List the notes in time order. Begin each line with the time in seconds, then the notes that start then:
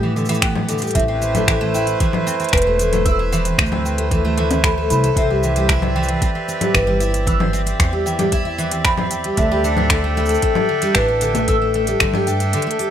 Already playing: A2 E3 B3 G4
0.03 E3
0.16 D3, cabasa
0.25 E3, closed hi-hat, cabasa
0.30 cabasa
0.34 cabasa
0.42 B3 G5, finger snap, kick, closed hi-hat, cabasa
0.55 B3, low conga
0.69 D3, closed hi-hat, cabasa
0.78 closed hi-hat, cabasa
0.82 G3, cabasa
0.87 closed hi-hat, cabasa
0.95 A1 A3 C4 E5, kick, closed hi-hat, cabasa
0.99 closed hi-hat
1.08 C4 E4
1.13 B4
1.20 C4 C5, cabasa
1.35 A3, closed hi-hat, low conga, cabasa
1.48 E3, finger snap, kick, closed hi-hat, cabasa
1.61 A3
1.74 E4 G5, cabasa
1.87 E4, closed hi-hat, cabasa
2.00 E3, kick, closed hi-hat, cabasa
2.13 C4, low conga
2.27 C4, cabasa
2.40 C4, closed hi-hat, cabasa
2.44 closed hi-hat
2.49 closed hi-hat
2.53 E1 C4 B4, finger snap, kick, closed hi-hat, cabasa
2.58 closed hi-hat
2.62 closed hi-hat
2.67 A3
2.79 E3, closed hi-hat, cabasa
2.93 A3, closed hi-hat, low conga, cabasa
3.05 E4 E6, kick, closed hi-hat, cabasa
3.19 E4
3.32 E3, cabasa
3.45 C4, closed hi-hat, cabasa
3.58 D2 C4, finger snap, kick, closed hi-hat
3.66 cabasa
3.72 C4, low conga
3.85 C4 G5, cabasa
3.98 A3, closed hi-hat
4.11 E3, kick, closed hi-hat, cabasa
4.25 A3
4.38 E3, closed hi-hat
4.51 E3, closed hi-hat, low conga, cabasa
4.64 A3 B5, finger snap, kick, cabasa
4.78 A4
4.90 C2 A3 B5, closed hi-hat, cabasa
5.04 A4, closed hi-hat, cabasa
5.16 C2 C4 E5, kick, closed hi-hat, cabasa
5.30 G3 E5
5.43 E3, cabasa
5.49 G4
5.56 G3, closed hi-hat, cabasa
5.69 E4, finger snap, kick, closed hi-hat, cabasa
5.82 E4 D5, low conga
5.95 E3 G5
6.03 cabasa
6.09 C4, closed hi-hat
6.22 C4, kick, closed hi-hat, cabasa
6.35 C4
6.48 C4, cabasa
6.61 G3, closed hi-hat, low conga, cabasa
6.74 G1 E3 B4, finger snap, kick, closed hi-hat, cabasa
6.87 G3
7.00 E4, closed hi-hat, cabasa
7.14 E4, closed hi-hat, cabasa
7.27 E3 E6, kick, closed hi-hat, cabasa
7.40 C4, low conga
7.53 C4, cabasa
7.66 C4, closed hi-hat, cabasa
7.80 E2 C4, finger snap, kick, closed hi-hat, cabasa
7.93 G3
8.06 E3 G5, cabasa
8.19 G3, closed hi-hat, low conga, cabasa
8.32 E4, kick, closed hi-hat, cabasa
8.45 E4
8.58 E3, cabasa
8.71 C4, closed hi-hat, cabasa
8.85 C4 B5, finger snap, kick, closed hi-hat, cabasa
8.98 C4, low conga
9.11 C4, closed hi-hat, cabasa
9.24 G3, closed hi-hat
9.37 D2 D3 D4 E5, kick, closed hi-hat, cabasa
9.51 G3
9.64 D4 A4, cabasa
9.77 D4, low conga
9.90 D3 G5, finger snap, kick, closed hi-hat, cabasa
10.04 A3
10.16 A3 G5, cabasa
10.26 closed hi-hat, cabasa
10.30 A3, cabasa
10.34 cabasa
10.42 A3, kick, closed hi-hat, cabasa
10.55 G3, low conga
10.69 D3
10.82 G3, closed hi-hat, cabasa
10.95 A1 D4 B4, finger snap, kick, closed hi-hat, cabasa
11.08 D4
11.21 D3, closed hi-hat, cabasa
11.35 A3, closed hi-hat, low conga, cabasa
11.48 A3 E6, kick, closed hi-hat, cabasa
11.62 A3
11.74 A3, closed hi-hat
11.87 G3, closed hi-hat, cabasa
12.00 G2 D3, finger snap, kick, closed hi-hat, cabasa
12.14 G3, low conga
12.27 D4 G5, closed hi-hat, cabasa
12.40 D4, closed hi-hat, cabasa
12.53 D3, closed hi-hat, cabasa
12.62 closed hi-hat
12.67 A3, closed hi-hat
12.79 G3, closed hi-hat, cabasa